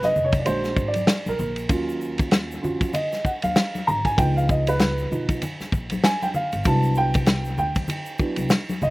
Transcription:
Already playing: F1 G#3 B3 D#4
0.02 D#5, snare, high conga, shaker
0.16 F1, low conga, shaker
0.25 C#5
0.32 kick, ride, high conga, shaker
0.39 D5
0.45 A#1 G#3 D4 F#4 C5, ride, low conga, shaker
0.64 snare, shaker
0.77 G#1, kick, shaker
0.88 D5
0.94 ride, high conga, shaker
1.07 snare, hi-hat pedal, ride, shaker
1.26 A#1 A#4, high conga, shaker
1.39 A#1, low conga, shaker
1.56 ride, shaker
1.69 D#2 F#3 C#4 F4, kick, ride, shaker
1.89 shaker
2.01 shaker
2.18 kick, ride, shaker
2.31 snare, hi-hat pedal, ride, shaker
2.51 shaker
2.61 F2 C#4 F4 F#4, low conga, shaker
2.81 kick, ride, high conga, shaker
2.93 D#5, ride, low conga, shaker
3.12 snare, shaker
3.25 F#5, kick, shaker
3.42 D#2 F5, ride, high conga, shaker
3.56 snare, hi-hat pedal, ride, shaker
3.75 high conga, shaker
3.87 G#1 A#5, low conga, shaker
4.05 G#5, kick, ride, shaker
4.17 C#2 F3 B3 D#4 G5, kick, ride, shaker
4.37 F5, shaker
4.49 D#5, kick, shaker
4.67 B4, ride, shaker
4.79 snare, hi-hat pedal, ride, shaker
4.98 shaker
5.11 B1 F3 B3 D#4, low conga, shaker
5.29 kick, ride, high conga, shaker
5.42 ride, low conga, shaker
5.61 muted upright bass stroke, snare, shaker
5.72 A#1, kick, shaker
5.90 ride, high conga, shaker
6.04 G#5, snare, hi-hat pedal, ride, shaker
6.22 G5, high conga, shaker
6.34 F5, low conga, shaker
6.52 G1, ride, shaker
6.64 C2 F#3 B3 D4 E4 A5, kick, ride, shaker
6.83 shaker
6.95 G5, shaker
7.14 kick, ride, shaker
7.26 snare, hi-hat pedal, ride, shaker
7.45 shaker
7.57 D2 G5, low conga, shaker
7.75 kick, ride, high conga, shaker
7.88 ride, low conga, shaker
8.06 shaker
8.18 F#3 B3 D4 E4, kick, shaker
8.36 C2, ride, high conga, shaker
8.49 snare, hi-hat pedal, ride, shaker
8.69 high conga, shaker
8.82 C2 D#5, low conga, shaker

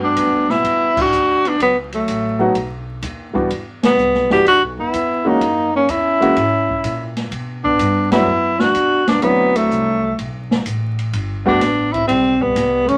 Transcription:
Already playing: G2 G3 A3 B3 D4 F#4
0.01 B3 D4
0.16 F#2, kick, hi-hat pedal, ride
0.31 D2
0.48 B1 B3 E4, snare
0.64 E2, kick, ride
0.97 D4, muted upright bass stroke, kick, crash
1.01 F#4
1.12 D2, hi-hat pedal
1.45 B3 D4, ride
1.59 C#2 F#3 B3, kick, ride
1.92 F#3 A3, ride
2.07 A1, kick, hi-hat pedal, ride
2.39 F#3 A3 B3 D#4 F#4
2.55 B1, kick, ride
3.02 D#2, kick, hi-hat pedal, ride
3.33 E3 G3 B3 D4 F#4, muted upright bass stroke, kick
3.50 E2, kick, ride
3.83 G3 B3, snare, ride
3.97 C2, hi-hat pedal
4.13 B1, snare
4.29 G1 E3 G3 B3 D4 E4 F#4 G4, snare
4.46 D2 D4 F#4, kick, ride
4.62 B1
4.78 G1 B3 E4
4.93 E2, kick, hi-hat pedal, ride
5.24 E3 G#3 A#3 C#4 D#4 F#4
5.41 F#2, kick, ride
5.75 A#3 C#4
5.89 E2 C#4 E4, kick, hi-hat pedal, ride
6.20 E3 G#3 A#3 C#4 F#4, ride
6.36 G#2, kick, ride
6.69 kick
6.84 A#2, kick, hi-hat pedal, ride
7.16 snare, ride
7.31 B2, kick, ride
7.64 B3 D4, kick
7.79 G2, kick, hi-hat pedal, ride
8.11 F#3 A3 B3 D4 E4 F#4, snare, ride
8.26 F#2
8.59 D4 F#4, snare
8.75 E2, kick, hi-hat pedal, ride
9.07 B3 D4, snare, ride
9.22 D2 F#3 A3 B3 C4 D4 E4, kick, ride
9.55 F#3 A3, ride
9.70 C2, kick, hi-hat pedal
10.18 B1, kick, ride
10.51 snare
10.65 A1, kick, hi-hat pedal, ride
10.99 ride
11.13 G1, kick, ride
11.45 G3 A3 B3 D4 F#4, kick
11.61 A1, kick, snare, hi-hat pedal, ride
11.93 C4 E4, kick, ride
12.06 B1 G3 C4, kick, ride
12.38 G3 B3, kick
12.56 C2, kick, snare, hi-hat pedal, ride
12.85 A3 C#4, kick, ride

